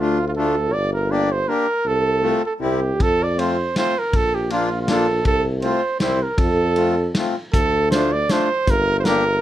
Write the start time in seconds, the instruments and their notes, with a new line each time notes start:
Already playing: tuba D2
0.00 accordion A3 D4 F4, trumpet F4
0.28 trumpet F4
0.37 accordion A3 D4 F4, trumpet A4
0.73 tuba G1, trumpet D5
0.93 trumpet A#4
1.10 accordion A#3 D4 G4, trumpet D5
1.32 trumpet C5
1.47 accordion A#3 D4 G4, trumpet A#4
1.85 tuba C2, trumpet A4
2.22 accordion A3 C4 F4
2.46 trumpet A4
2.60 tuba C2, accordion G3 C4 E4, trumpet G4
3.00 tuba F2, trumpet A4, kick, ride
3.23 trumpet D5
3.37 accordion A3 C4 F4, trumpet C5, ride
3.76 accordion A3 C4 F4, trumpet C5, snare, ride
3.99 trumpet A#4
4.13 tuba A#1, trumpet A4, kick, ride
4.35 trumpet G4
4.50 accordion A#3 D4 F4, trumpet F4, ride
4.82 trumpet F4
4.87 accordion A#3 D4 F4, trumpet A4, snare, ride
5.25 tuba C2, trumpet A4, kick, ride
5.62 accordion A3 C4 F4, trumpet C5, ride
6.00 tuba C2, accordion G3 C4 E4, trumpet C5, snare, ride
6.23 trumpet A#4
6.38 tuba F2, trumpet A4, kick, ride
6.76 accordion A3 C4 F4, ride
7.15 accordion A3 C4 F4, snare, ride
7.53 tuba D2, trumpet A4, kick, closed hi-hat
7.91 accordion A3 D4 F4, trumpet C5, snare, closed hi-hat
8.13 trumpet D5
8.29 accordion A3 D4 F4, trumpet C5, snare, closed hi-hat
8.67 tuba G1, trumpet A#4, kick, closed hi-hat
8.99 trumpet C5
9.05 accordion A#3 D4 G4, trumpet A#4, snare, closed hi-hat